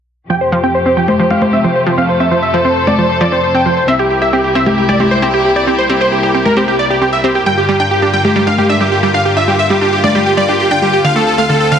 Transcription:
0.30 string section F2 C3 A3 G4, synth pluck F3, supersaw synth G5
0.41 supersaw synth C5
0.52 synth pluck F3, supersaw synth C5
0.63 synth pluck C4, supersaw synth G5
0.75 supersaw synth C5
0.86 synth pluck C4, supersaw synth C5
0.97 synth pluck F3, supersaw synth G5
1.08 supersaw synth C5, high conga
1.19 synth pluck F3, supersaw synth C5
1.31 synth pluck C4, supersaw synth F5, high conga
1.42 supersaw synth C5, high conga
1.53 synth pluck C4, supersaw synth E5
1.64 synth pluck F3, supersaw synth C5
1.75 supersaw synth C5
1.87 synth pluck F3, supersaw synth C5
1.98 synth pluck C4, supersaw synth F5
2.09 string section A4, supersaw synth C5
2.20 synth pluck C4, supersaw synth E5
2.31 synth pluck F3, supersaw synth C5
2.42 supersaw synth E5
2.54 synth pluck F3, supersaw synth C5
2.65 synth pluck C4, supersaw synth C5
2.76 supersaw synth C5
2.87 synth pluck C4, supersaw synth D5, high conga
2.98 synth pluck F3, supersaw synth C5
3.10 supersaw synth C5
3.21 synth pluck F3, supersaw synth D5
3.32 synth pluck C4, supersaw synth C5
3.43 supersaw synth C5
3.54 synth pluck C4, supersaw synth G5
3.66 synth pluck F3, supersaw synth C5
3.77 supersaw synth C5
3.88 string section C2 C3 A#3 E4, synth pluck C4, supersaw synth E5
3.99 supersaw synth G4, synth pluck G4
4.10 supersaw synth G4
4.22 synth pluck G4, supersaw synth E5
4.33 synth pluck C4, supersaw synth G4
4.44 supersaw synth G4
4.55 synth pluck C4, supersaw synth E5
4.66 supersaw synth G4, synth pluck G4, high conga
4.78 supersaw synth G4
4.89 synth pluck G4, supersaw synth D5, high conga
5.00 synth pluck C4, supersaw synth G4, high conga
5.11 supersaw synth C5
5.22 synth pluck C4, supersaw synth G4
5.34 supersaw synth G4, synth pluck G4
5.45 supersaw synth G4
5.56 synth pluck G4, supersaw synth D5
5.67 synth pluck C4, supersaw synth G4
5.78 supersaw synth C5
5.90 synth pluck C4, supersaw synth G4
6.01 synth pluck G4, supersaw synth C5
6.12 supersaw synth G4
6.23 synth pluck G4, supersaw synth G4
6.34 synth pluck C4, supersaw synth G4
6.46 supersaw synth A#4, high conga
6.57 synth pluck C4, supersaw synth G4
6.68 supersaw synth G4, synth pluck G4
6.79 supersaw synth D5
6.90 supersaw synth G4, synth pluck G4
7.02 synth pluck C4, supersaw synth G4
7.13 supersaw synth E5
7.24 synth pluck C4, supersaw synth G4
7.35 supersaw synth G4, synth pluck G4
7.46 string section G2 D3 F4, synth pluck G3, supersaw synth G5
7.57 supersaw synth G4
7.69 synth pluck G3, supersaw synth G4
7.80 synth pluck D4, supersaw synth G5
7.91 supersaw synth G4
8.02 synth pluck D4, supersaw synth G4
8.13 synth pluck G3, supersaw synth G5
8.25 supersaw synth G4, high conga
8.36 synth pluck G3, supersaw synth G4
8.47 synth pluck D4, supersaw synth F5, high conga
8.58 supersaw synth G4, high conga
8.69 synth pluck D4, supersaw synth E5
8.81 synth pluck G3, supersaw synth G4
8.92 supersaw synth G4
9.03 synth pluck G3, supersaw synth G4
9.14 synth pluck D4, supersaw synth F5
9.25 supersaw synth G4
9.37 synth pluck D4, supersaw synth E5
9.48 synth pluck G3, supersaw synth G4
9.59 supersaw synth E5
9.70 synth pluck G3, supersaw synth G4
9.81 synth pluck D4, supersaw synth G4
9.93 supersaw synth G4
10.04 synth pluck D4, supersaw synth D5, high conga
10.15 synth pluck G3, supersaw synth G4
10.26 supersaw synth G4
10.37 synth pluck G3, supersaw synth D5
10.48 synth pluck D4, supersaw synth G4
10.60 supersaw synth G4
10.71 synth pluck D4, supersaw synth G5
10.82 synth pluck G3, supersaw synth G4
10.93 supersaw synth G4
11.04 string section D2 D3 C4, synth pluck D3, supersaw synth F5
11.16 synth pluck A3, supersaw synth A4
11.27 supersaw synth A4
11.38 synth pluck A3, supersaw synth F5
11.49 synth pluck D3, supersaw synth A4
11.60 supersaw synth A4
11.72 synth pluck D3, supersaw synth F5

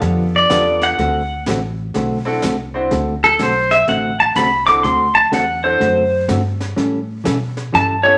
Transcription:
Already playing: upright piano B3 D4 F4 G4 A4
0.01 upright bass F2, hollow-body jazz guitar D3 F3 B3 D4 G4, brush sweep, snare
0.36 pedal steel guitar D5
0.49 upright bass E2, hollow-body jazz guitar D3 F3 B3 D4 G4, upright piano B3 D4 F4 G4 A4, snare, hi-hat pedal
0.81 pedal steel guitar F#5, snare
0.98 upright bass D2, hollow-body jazz guitar D3 A3 C4 F#4 A4, brush sweep, snare
1.46 upright bass A1, hollow-body jazz guitar D3 A3 C4 F#4 A4, snare, hi-hat pedal
1.94 upright bass B1, hollow-body jazz guitar D3 A3 C4 F#4 A4, brush sweep, snare
2.25 upright piano C4 D4 E4 F#4 A4
2.42 upright bass C2, hollow-body jazz guitar D3 A3 C4 F#4 A4, snare, hi-hat pedal
2.74 upright piano C4 D4 E4 F#4 C5
2.91 upright bass D2, hollow-body jazz guitar D3 A3 C4 F#4 A4, brush sweep, snare
3.24 pedal steel guitar A4
3.39 upright bass B1, hollow-body jazz guitar D3 A3 C4 F#4 A4, pedal steel guitar C5, snare, hi-hat pedal
3.71 pedal steel guitar E5, snare
3.87 upright bass A1, hollow-body jazz guitar D3 A3 C4 F#4 A4, pedal steel guitar F#5, brush sweep, snare
4.20 pedal steel guitar A5
4.36 upright bass C2, hollow-body jazz guitar D3 A3 C4 F#4 A4, pedal steel guitar B5, snare, hi-hat pedal
4.66 upright piano C4 D4 E4 F#4 A4, pedal steel guitar D6, snare
4.83 upright bass D2, hollow-body jazz guitar D3 A3 C4 F#4 A4, pedal steel guitar C6, brush sweep, snare
5.15 pedal steel guitar A5
5.32 upright bass E2, hollow-body jazz guitar D3 A3 C4 F#4 A4, pedal steel guitar F#5, snare, hi-hat pedal
5.63 upright piano C4 D4 E4 F#4 A4, pedal steel guitar C5
5.80 upright bass F#2, hollow-body jazz guitar D3 A3 C4 F#4 A4, brush sweep, snare
6.28 upright bass G2, hollow-body jazz guitar D3 A3 C4 F#4 A4, snare, hi-hat pedal
6.60 snare
6.76 upright bass A2, hollow-body jazz guitar E3 G3 C#4 E4 A4, brush sweep, snare
7.24 upright bass B2, hollow-body jazz guitar E3 G3 C#4 E4 A4, snare, hi-hat pedal
7.57 snare
7.72 upright bass G2, hollow-body jazz guitar E3 G3 C#4 E4 A4, pedal steel guitar A5, brush sweep, snare
8.03 upright piano B3 C#4 E4 G4 A4, pedal steel guitar C#5

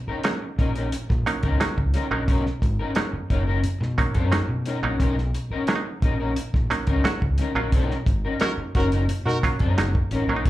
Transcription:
0.07 clean electric guitar C#4 D#4 A#4, muted fingered electric bass stroke
0.24 clav F#3 A#3 C#4 D#4, muted clean electric guitar stroke, snare, closed hi-hat
0.42 muted clean electric guitar stroke
0.58 fingered electric bass A#1, clean electric guitar C#4 D#4 A#4, kick, snare, closed hi-hat
0.75 clean electric guitar C#4 D#4 A#4, closed hi-hat
0.92 muted clean electric guitar stroke, closed hi-hat
1.10 fingered electric bass A#1, muted clean electric guitar stroke, kick, snare
1.26 clav F#3 A#3 C#4 D#4, closed hi-hat
1.43 fingered electric bass C#2, clean electric guitar C#4 D#4 A#4, kick, closed hi-hat
1.60 clav F#3 A#3 C#4 D#4, muted fingered electric bass stroke, snare, closed hi-hat
1.77 fingered electric bass C#2, muted clean electric guitar stroke, kick
1.94 clean electric guitar C#4 D#4 A#4, snare, closed hi-hat
2.11 fingered electric bass A#1, clav F#3 A#3 C#4 D#4, clean electric guitar C#4 D#4 A#4
2.28 fingered electric bass B1, clean electric guitar C#4 D#4 A#4, kick, closed hi-hat
2.46 snare
2.62 fingered electric bass G#1, muted clean electric guitar stroke, kick, closed hi-hat
2.79 clean electric guitar C#4 D#4 A#4
2.95 clav F#3 A#3 C#4 D#4, muted clean electric guitar stroke, snare, closed hi-hat
3.13 muted fingered electric bass stroke, muted clean electric guitar stroke
3.30 fingered electric bass F#1, clean electric guitar C#4 D#4 A#4, kick, closed hi-hat
3.47 clean electric guitar C#4 D#4 A#4
3.64 muted clean electric guitar stroke, muted fingered electric bass stroke, closed hi-hat
3.81 fingered electric bass B2, muted clean electric guitar stroke, snare
3.98 clav F#3 A#3 C#4 D#4, kick, closed hi-hat
4.15 fingered electric bass F#2, clean electric guitar C#4 D#4 A#4, kick, closed hi-hat
4.32 clav F#3 A#3 C#4 D#4, snare, closed hi-hat
4.49 fingered electric bass B2, muted clean electric guitar stroke
4.66 clean electric guitar C#4 D#4 A#4, snare, closed hi-hat
4.82 fingered electric bass A#1, clav F#3 A#3 C#4 D#4, clean electric guitar C#4 D#4 A#4
5.00 fingered electric bass B1, clean electric guitar C#4 D#4 A#4, kick, closed hi-hat
5.18 snare
5.34 muted clean electric guitar stroke, closed hi-hat
5.50 clean electric guitar C#4 D#4 A#4, muted fingered electric bass stroke
5.67 clav F#3 A#3 C#4 D4, muted clean electric guitar stroke, snare, closed hi-hat
5.76 clav D#4
5.85 muted clean electric guitar stroke
6.02 fingered electric bass A#1, clean electric guitar C#4 D#4 A#4, kick, closed hi-hat
6.20 clean electric guitar C#4 D#4 A#4
6.36 muted clean electric guitar stroke, closed hi-hat
6.54 fingered electric bass A#1, muted clean electric guitar stroke, kick, snare
6.70 clav F#3 A#3 C#4 D#4, closed hi-hat
6.87 fingered electric bass C#2, clean electric guitar C#4 D#4 A#4, kick, closed hi-hat
7.04 clav F#3 A#3 C#4 F#4, muted fingered electric bass stroke, muted clean electric guitar stroke, snare, closed hi-hat
7.22 fingered electric bass C#2, muted clean electric guitar stroke, kick
7.38 clean electric guitar C#4 D#4 A#4, snare, closed hi-hat
7.54 fingered electric bass A#1, clav F#3 A#3 C#4 F4, clean electric guitar D#4 A#4
7.58 clean electric guitar C#4
7.72 fingered electric bass B1, clean electric guitar C#4 D#4, kick, closed hi-hat
7.77 clean electric guitar A#4
7.91 snare
8.06 fingered electric bass G#1, muted clean electric guitar stroke, kick, closed hi-hat
8.25 clean electric guitar C#4 D#4 A#4
8.40 clav F#3 A#3 C#4 D#4, horn section D#4 F#4 A#4, muted clean electric guitar stroke, snare, closed hi-hat
8.57 muted fingered electric bass stroke, muted clean electric guitar stroke
8.75 fingered electric bass F#1, clean electric guitar C#4 D#4 A#4, horn section D#4 F#4 A#4, kick, closed hi-hat
8.92 clean electric guitar C#4 D#4 A#4, closed hi-hat
9.09 muted fingered electric bass stroke, muted clean electric guitar stroke, closed hi-hat
9.26 fingered electric bass B2, horn section D#4 F#4 A#4, muted clean electric guitar stroke, snare
9.43 clav F#3 A#3 C#4 F4, kick, closed hi-hat
9.59 fingered electric bass F#2, clean electric guitar C#4 D#4 A#4, kick, closed hi-hat
9.76 fingered electric bass F#1, clav F#3 A#3 C#4 D#4, muted clean electric guitar stroke, snare, closed hi-hat
9.95 muted clean electric guitar stroke, kick
10.11 fingered electric bass A1, clean electric guitar C#4 D#4 A#4, snare, closed hi-hat
10.28 fingered electric bass A#1, clav F#3 A#3 C#4 D4, clean electric guitar C#4 D#4 A#4
10.36 clav D#4
10.46 fingered electric bass B1, clean electric guitar C#4, kick, closed hi-hat

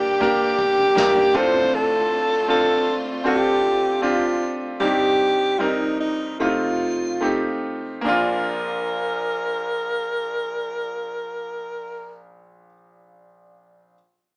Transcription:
Already playing: grand piano G2 D3 A#3 D4 G4 A#4, string section D3 G3 A#3 G4, alto saxophone G4
0.20 grand piano A#3 D4 G4 A#4, alto saxophone G4, kick, floor tom
0.59 kick
0.78 floor tom
0.95 grand piano A#3 D4 G4 A#4, snare
1.16 floor tom
1.34 grand piano A2 C4 D4 F4 A4, string section A3 C4 F4, alto saxophone C5, kick, crash
1.53 floor tom
1.75 alto saxophone A4
2.48 grand piano C4 D4 F4 A4, alto saxophone A4
3.24 grand piano C4 D4 F4 A4, alto saxophone G4
4.02 grand piano C4 D4 F4 G4, alto saxophone F4
4.80 grand piano G2 G3 C4 D#4 G4, alto saxophone G4
5.59 grand piano G3 C4 D#4 A#4, alto saxophone D#4
6.00 alto saxophone D#4
6.40 grand piano C3 A3 C4 D#4 F4, alto saxophone F4
7.21 grand piano A3 C4 D#4 G4
8.01 grand piano A#1 A#3 D4
8.06 grand piano F4, alto saxophone A#4

